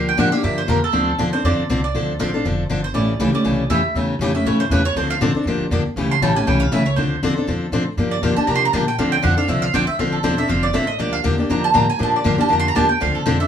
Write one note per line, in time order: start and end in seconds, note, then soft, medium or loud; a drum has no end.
0.00 0.17 D2 medium
0.00 0.10 D3 medium
0.00 0.11 F3 medium
0.00 0.11 A#3 medium
0.00 0.11 D4 medium
0.00 0.11 G4 medium
0.09 0.18 G5 medium
0.17 0.42 A2 medium
0.17 0.28 D3 medium
0.17 0.28 F3 medium
0.17 0.28 A#3 medium
0.17 0.28 D4 loud
0.17 0.28 G4 medium
0.17 0.32 F#5 medium
0.32 0.42 A#3 soft
0.32 0.43 D4 medium
0.32 0.42 G4 medium
0.32 0.43 F5 medium
0.43 0.68 G2 medium
0.43 0.61 D3 medium
0.43 0.61 F3 medium
0.43 0.61 A#3 medium
0.43 0.61 D4 medium
0.43 0.61 G4 medium
0.43 0.57 E5 medium
0.58 0.68 C5 medium
0.68 0.92 F2 medium
0.68 0.78 D3 medium
0.68 0.78 F3 medium
0.68 0.78 A#3 medium
0.68 0.78 D4 medium
0.68 0.79 G4 loud
0.68 0.83 A#4 medium
0.84 1.17 A4 medium
0.93 1.18 D2 medium
0.93 1.11 D3 medium
0.93 1.11 F3 medium
0.93 1.11 C4 medium
0.93 1.11 D4 medium
0.93 1.11 A4 medium
1.18 1.43 E2 medium
1.18 1.29 D3 medium
1.18 1.29 F3 medium
1.18 1.29 C4 medium
1.18 1.29 D4 medium
1.18 1.29 A4 medium
1.33 1.44 C4 soft
1.33 1.44 D4 medium
1.33 1.43 A4 medium
1.33 1.43 C5 medium
1.44 1.57 F2 medium
1.44 1.62 D3 medium
1.44 1.62 F3 medium
1.44 1.62 C4 medium
1.44 1.62 D4 medium
1.44 1.62 A4 medium
1.44 1.81 D5 medium
1.58 muted upright bass stroke soft
1.69 1.93 C2 medium
1.69 1.79 D3 medium
1.69 1.79 F3 medium
1.69 1.79 C4 medium
1.69 1.80 D4 medium
1.69 1.80 A4 medium
1.84 2.17 D5 medium
1.95 2.19 D2 medium
1.95 2.12 D3 medium
1.95 2.12 F3 medium
1.95 2.13 C4 medium
1.95 2.13 D4 medium
1.95 2.13 A4 medium
2.19 2.44 A1 medium
2.19 2.29 D3 medium
2.19 2.29 F3 medium
2.19 2.30 C4 medium
2.19 2.29 D4 medium
2.19 2.30 A4 medium
2.19 2.43 F5 medium
2.34 2.44 C4 soft
2.34 2.44 D4 medium
2.34 2.44 A4 medium
2.45 2.69 F1 medium
2.45 2.63 D3 medium
2.45 2.63 F3 medium
2.45 2.63 C4 medium
2.45 2.63 D4 medium
2.45 2.63 A4 medium
2.69 2.93 G1 medium
2.69 2.80 D3 medium
2.69 2.80 F3 medium
2.69 2.80 C4 medium
2.69 2.80 D4 medium
2.69 2.80 A4 medium
2.84 2.94 C5 medium
2.94 3.18 A1 medium
2.94 3.12 C#3 medium
2.94 3.12 E3 medium
2.94 3.12 A3 medium
2.94 3.12 C#4 medium
2.94 3.13 G4 medium
2.94 3.31 D5 medium
3.19 3.33 C#2 medium
3.19 3.30 C#3 medium
3.19 3.30 E3 loud
3.19 3.30 A3 medium
3.19 3.30 C#4 medium
3.19 3.30 G4 medium
3.33 3.44 A3 soft
3.33 3.44 C#4 medium
3.33 3.44 G4 medium
3.33 3.68 D5 medium
3.33 muted upright bass stroke soft
3.44 3.69 C2 medium
3.44 3.63 C#3 medium
3.44 3.63 E3 medium
3.44 3.63 A3 medium
3.44 3.63 C#4 medium
3.44 3.63 G4 medium
3.70 3.94 F2 medium
3.70 3.80 C#3 medium
3.70 3.80 E3 medium
3.70 3.80 A3 medium
3.70 3.80 C#4 medium
3.70 3.81 G4 medium
3.70 3.93 E5 medium
3.95 4.18 E2 medium
3.95 4.13 C#3 medium
3.95 4.13 E3 medium
3.95 4.14 A3 medium
3.95 4.14 C#4 medium
3.95 4.14 G4 medium
4.19 4.44 F2 medium
4.19 4.31 C#3 medium
4.19 4.31 E3 medium
4.19 4.31 A3 loud
4.19 4.31 C#4 loud
4.19 4.31 G4 loud
4.35 4.45 A3 soft
4.35 4.45 C#4 medium
4.35 4.45 G4 medium
4.35 4.45 E5 medium
4.45 4.69 G2 medium
4.45 4.63 C#3 medium
4.45 4.64 E3 medium
4.45 4.64 A3 medium
4.45 4.64 C#4 medium
4.45 4.64 G4 medium
4.45 4.60 C#5 medium
4.60 4.70 C5 medium
4.70 4.95 E2 medium
4.70 4.81 C#3 medium
4.70 4.81 E3 medium
4.70 4.81 A3 loud
4.70 4.81 C#4 medium
4.70 4.81 G4 medium
4.70 4.85 B4 medium
4.85 4.96 C#5 loud
4.96 5.20 D2 medium
4.96 5.14 D3 medium
4.96 5.14 F3 medium
4.96 5.14 C4 medium
4.96 5.14 D4 medium
4.96 5.14 A4 medium
4.96 5.10 C5 medium
5.10 5.17 F5 medium
5.21 5.34 A2 medium
5.21 5.31 D3 medium
5.21 5.31 F3 medium
5.21 5.31 C4 loud
5.21 5.31 D4 loud
5.21 5.31 A4 loud
5.34 5.46 C4 medium
5.34 5.46 D4 medium
5.34 5.45 A4 medium
5.34 muted upright bass stroke soft
5.45 5.59 G2 medium
5.45 5.64 D3 medium
5.45 5.65 F3 medium
5.45 5.65 A#3 medium
5.45 5.65 D4 medium
5.45 5.65 G4 medium
5.60 muted upright bass stroke soft
5.71 5.84 F2 medium
5.71 5.81 D3 medium
5.71 5.82 F3 medium
5.71 5.82 A#3 medium
5.71 5.82 D4 medium
5.71 5.82 G4 medium
5.85 muted upright bass stroke soft
5.96 6.21 C#2 medium
5.96 6.15 C#3 medium
5.96 6.15 E3 medium
5.96 6.15 A3 medium
5.96 6.15 C#4 medium
5.96 6.15 G4 medium
6.11 6.22 C6 medium
6.21 6.46 A1 medium
6.21 6.32 C#3 medium
6.21 6.32 E3 loud
6.21 6.32 A3 loud
6.21 6.32 C#4 medium
6.21 6.32 G4 loud
6.21 6.36 A5 medium
6.35 6.46 A3 soft
6.35 6.46 C#4 medium
6.35 6.46 G4 medium
6.35 6.47 G#5 medium
6.47 6.71 C2 medium
6.47 6.65 C#3 medium
6.47 6.65 E3 medium
6.47 6.65 A3 medium
6.47 6.65 C#4 medium
6.47 6.65 G4 medium
6.47 6.61 G5 medium
6.60 6.71 F5 loud
6.72 6.96 C#2 medium
6.72 6.82 C#3 medium
6.72 6.82 E3 medium
6.72 6.82 A3 loud
6.72 6.82 C#4 loud
6.72 6.83 G4 medium
6.72 6.86 E5 medium
6.86 6.96 C#5 medium
6.96 7.21 D2 medium
6.96 7.15 D3 medium
6.96 7.15 F3 medium
6.96 7.15 C4 medium
6.96 7.15 D4 medium
6.96 7.16 A4 medium
6.96 7.20 C5 medium
7.22 7.47 E2 medium
7.22 7.33 D3 medium
7.22 7.33 F3 medium
7.22 7.33 C4 medium
7.22 7.33 D4 medium
7.22 7.33 A4 loud
7.36 7.47 C4 soft
7.36 7.47 D4 soft
7.36 7.47 A4 medium
7.47 7.71 F2 medium
7.47 7.65 D3 medium
7.47 7.65 F3 medium
7.47 7.66 C4 medium
7.47 7.66 D4 medium
7.47 7.66 A4 medium
7.72 7.96 A2 medium
7.72 7.82 D3 medium
7.72 7.83 F3 medium
7.72 7.83 C4 medium
7.72 7.83 D4 medium
7.72 7.83 A4 medium
7.97 8.21 G2 medium
7.97 8.16 D3 medium
7.97 8.16 F3 medium
7.97 8.16 A#3 medium
7.97 8.16 D4 medium
7.97 8.16 G4 medium
8.11 8.22 D5 medium
8.22 8.35 F2 medium
8.22 8.33 D3 medium
8.22 8.33 F3 medium
8.22 8.33 A#3 medium
8.22 8.33 D4 medium
8.22 8.33 G4 medium
8.22 8.37 F5 medium
8.36 8.47 A#3 soft
8.36 8.47 D4 soft
8.36 8.47 G4 medium
8.36 8.47 A5 medium
8.36 muted upright bass stroke soft
8.47 8.72 C3 medium
8.47 8.66 D3 medium
8.47 8.66 F3 medium
8.47 8.66 A#3 medium
8.47 8.66 D4 medium
8.47 8.66 G4 medium
8.47 8.55 A#5 medium
8.56 8.64 C6 loud
8.65 8.73 A#5 medium
8.73 8.98 A#2 medium
8.73 8.83 D3 medium
8.73 8.84 F3 medium
8.73 8.84 A#3 medium
8.73 8.84 D4 medium
8.73 8.84 G4 medium
8.73 8.87 A5 medium
8.88 8.98 G5 medium
8.98 9.23 D2 medium
8.98 9.16 D3 medium
8.98 9.17 F3 medium
8.98 9.17 C4 medium
8.98 9.17 D4 medium
8.98 9.17 A4 medium
8.98 9.12 F5 medium
9.12 9.23 G5 loud
9.22 9.48 F2 medium
9.22 9.33 D3 medium
9.22 9.33 F3 medium
9.22 9.33 C4 medium
9.22 9.34 D4 loud
9.22 9.34 A4 loud
9.22 9.37 F#5 medium
9.37 9.47 C4 soft
9.37 9.47 D4 medium
9.37 9.48 A4 medium
9.37 9.48 F5 medium
9.48 9.73 C2 medium
9.48 9.66 D3 medium
9.48 9.66 F3 medium
9.48 9.67 C4 medium
9.48 9.67 D4 medium
9.48 9.67 A4 medium
9.48 9.62 E5 medium
9.62 9.73 F5 loud
9.74 9.87 A#1 medium
9.74 9.84 D3 medium
9.74 9.84 F3 medium
9.74 9.84 C4 medium
9.74 9.84 D4 medium
9.74 9.84 A4 loud
9.74 9.87 G5 loud
9.87 9.98 E5 medium
9.87 muted upright bass stroke soft
9.99 10.23 A1 medium
9.99 10.17 D3 medium
9.99 10.17 F3 medium
9.99 10.17 C4 medium
9.99 10.17 D4 medium
9.99 10.17 A4 medium
9.99 10.13 F5 medium
10.12 10.23 A4 medium
10.23 10.48 E1 medium
10.23 10.34 D3 medium
10.23 10.34 F3 medium
10.23 10.34 C4 medium
10.23 10.34 D4 medium
10.23 10.34 A4 medium
10.23 10.38 C5 medium
10.37 10.48 C4 soft
10.37 10.47 D4 medium
10.37 10.48 A4 medium
10.37 10.49 E5 medium
10.48 10.73 F1 medium
10.48 10.66 D3 medium
10.48 10.67 F3 medium
10.48 10.67 C4 medium
10.48 10.67 D4 medium
10.48 10.67 A4 medium
10.48 10.63 F5 medium
10.63 10.74 D5 medium
10.73 10.98 A1 medium
10.73 10.84 D3 medium
10.73 10.84 F3 medium
10.73 10.84 C4 medium
10.73 10.85 D4 medium
10.73 10.84 A4 medium
10.73 10.88 E5 medium
10.87 10.99 D#5 medium
10.99 11.24 D2 medium
10.99 11.17 D3 medium
10.99 11.17 F3 medium
10.99 11.17 A#3 medium
10.99 11.18 D4 medium
10.99 11.17 G4 medium
10.99 11.13 D5 medium
11.13 11.20 F5 medium
11.24 11.49 E2 medium
11.24 11.34 D3 medium
11.24 11.34 F3 medium
11.24 11.34 A#3 medium
11.24 11.35 D4 loud
11.24 11.35 G4 medium
11.38 11.49 A#3 soft
11.38 11.49 D4 medium
11.38 11.49 G4 medium
11.49 11.74 F2 medium
11.49 11.68 D3 medium
11.49 11.68 F3 medium
11.49 11.68 A#3 medium
11.49 11.68 D4 medium
11.49 11.68 G4 medium
11.49 11.64 A#5 medium
11.64 11.74 A5 loud
11.74 12.00 A2 medium
11.74 11.85 D3 medium
11.74 11.85 F3 medium
11.74 11.85 A#3 medium
11.74 11.85 D4 medium
11.74 11.85 G4 medium
11.74 11.89 A#5 medium
11.90 12.00 G#5 medium
11.99 12.24 A#2 medium
11.99 12.17 D3 medium
11.99 12.18 F3 medium
11.99 12.18 A#3 medium
11.99 12.18 D4 medium
11.99 12.18 G4 medium
12.03 12.15 A5 medium
12.16 12.26 D5 medium
12.24 12.38 G2 medium
12.24 12.35 D3 medium
12.24 12.35 F3 medium
12.24 12.35 A#3 medium
12.24 12.35 D4 loud
12.24 12.36 G4 medium
12.24 12.39 F5 medium
12.38 12.48 A#3 soft
12.38 12.48 D4 medium
12.38 12.49 G4 medium
12.38 12.51 A5 medium
12.38 muted upright bass stroke soft
12.48 12.75 F2 medium
12.48 12.67 D3 medium
12.48 12.68 F3 medium
12.48 12.68 A#3 medium
12.48 12.68 D4 medium
12.48 12.68 G4 medium
12.53 12.59 A#5 medium
12.60 12.67 C6 loud
12.68 12.76 A#5 medium
12.75 13.00 E2 medium
12.75 12.85 D3 medium
12.75 12.86 F3 medium
12.75 12.86 A#3 medium
12.75 12.86 D4 loud
12.75 12.86 G4 loud
12.75 12.89 A5 medium
12.89 13.00 G5 medium
13.00 13.15 D2 medium
13.00 13.19 D3 medium
13.00 13.19 F3 medium
13.00 13.19 C4 medium
13.00 13.19 D4 medium
13.00 13.19 A4 medium
13.00 13.15 F5 medium
13.15 13.25 A4 medium
13.15 muted upright bass stroke soft
13.26 13.47 F2 medium
13.26 13.36 D3 medium
13.26 13.36 F3 loud
13.26 13.36 C4 loud
13.26 13.36 D4 loud
13.26 13.36 A4 loud
13.26 13.40 C5 medium
13.40 13.47 C4 soft
13.40 13.47 D4 medium
13.40 13.47 A4 medium
13.40 13.47 E5 medium